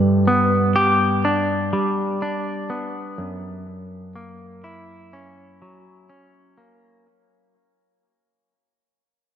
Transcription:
Already playing: G2
0.28 B3
0.76 G4
1.25 D4
1.73 G3
2.22 D4
2.70 B3
3.18 F#2
4.16 A#3
4.64 E4
5.13 C#4
5.62 F#3
6.10 C#4
6.58 A#3

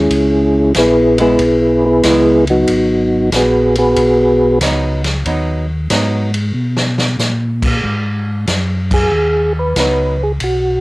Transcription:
Already playing: G#3 C#4 E4 G#4
0.10 C#2, kick, ride
0.74 A#1 G#4 B4, kick, snare, hi-hat pedal, ride
0.78 B3 E4
1.18 G#3 B3 E4 G#4 B4, ride
1.39 B1, kick, ride
1.86 B3 E4 G#4 B4
2.03 C#2 G#3 B3 E4, kick, snare, hi-hat pedal, ride
2.47 F#3 B3 D#4 F#4, ride
2.67 G#1, kick, ride
3.32 A#1 B3 F#4 G#4 B4, kick, snare, hi-hat pedal, ride
3.75 B3 F#4 G#4 B4, ride
3.96 B1, kick, ride
4.61 C#2 F#3 B3 D#4, kick, snare, hi-hat pedal, ride
5.04 snare, ride
5.25 D#2 F#3 B3 D#4, kick, ride
5.90 G#2 F#3 B3 D#4, kick, snare, hi-hat pedal, ride
6.34 ride
6.54 B2
6.77 snare
6.98 snare
7.18 A#2, snare, hi-hat pedal
7.63 kick, crash
7.83 G#2, kick
8.47 F#2, kick, snare, hi-hat pedal, ride
8.91 G#4, kick, crash
9.12 D#2
9.59 B4
9.76 C#2 F#3 B3 D#4 B4, kick, snare, hi-hat pedal, ride
10.23 G#4
10.40 B1 F#4, kick, ride

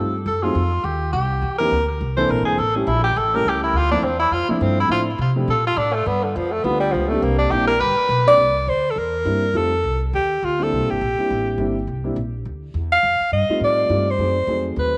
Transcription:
Already playing: G2 G3 A3 C4 D#4 F4
0.26 F#2 A4
0.43 F#3 A3 C4 D#4 F4 G#4
0.55 F2
0.84 D#2 G4
1.12 C2 G4
1.42 E2
1.58 E3 A#3 C4 D4 G4 A#4
1.71 D2
2.01 C2
2.17 E3 A#3 C4 D4 A4 C5
2.29 A#1 A#4
2.38 G1
2.45 E1 G#4
2.58 A1 A4
2.75 G3 A3 C#4 E4 G4
2.87 A#1 E4
3.04 G4
3.16 A1 A4
3.34 G3 A3 C#4 E4 A4 A#4
3.45 C#2 G4
3.64 E4
3.73 D2
3.77 F4
3.91 F3 A3 C4 D4 E4
4.02 E2 C4
4.19 E4
4.31 F2 F4
4.49 F3 A3 C4 D4 E4, muted upright bass stroke
4.61 G2 C4
4.80 E4
4.88 A2 F3 A3 C4 D4 E4 F4
5.18 C3
5.36 F3 A3 C4 D4 G4
5.48 A#2 A4
5.67 F4
5.77 A2 D4
5.93 A3
6.06 G2 B3
6.24 D3
6.36 F2 F3
6.52 A3
6.64 D2 G3 A3 B3 D4 F4
6.80 G3
6.93 C#2 F3
7.09 G3 A3 A#3 C4 D4 G4
7.22 C2 A#3
7.39 D4
7.51 A#1 G3 A#3 C4 D4 E4 G4
7.67 A#4
7.80 G1 B4
7.97 muted upright bass stroke
8.09 B1
8.26 G3 A#3 C4 D4 G4 D5
8.37 C2
8.67 D2 C5
8.91 A4
8.96 E2 A#4
9.24 G2 G3 A#3 C4 D4 E4
9.54 F2 G3 A3 C4 D#4 F4 A4
9.84 C2
10.13 D#2 G4
10.42 D2 F4
10.59 G3 A#3 C4 D4 E4
10.63 A4
10.72 C2
10.82 A#1
10.90 G1 G4
11.01 A#1
11.18 G3 A#3 C4 D4 E4, muted upright bass stroke
11.30 A1
11.58 G1 G3 A#3 C4 D4 E4
11.87 C2
12.04 G3 A#3 C4 D4 E4
12.16 A#1
12.45 D2
12.74 E2
12.92 F5
13.03 F2
13.20 muted upright bass stroke
13.32 G2 D#5
13.49 G3 A3 C4 D#4 F4, muted upright bass stroke
13.61 A2 D5
13.89 G2 G3 A3 C4 D#4 F4
14.11 C5
14.18 F#2 F#3 A3 C4 D#4 G#4
14.47 F2 F#3 A3 C4 D#4 G#4
14.76 D#2 B4

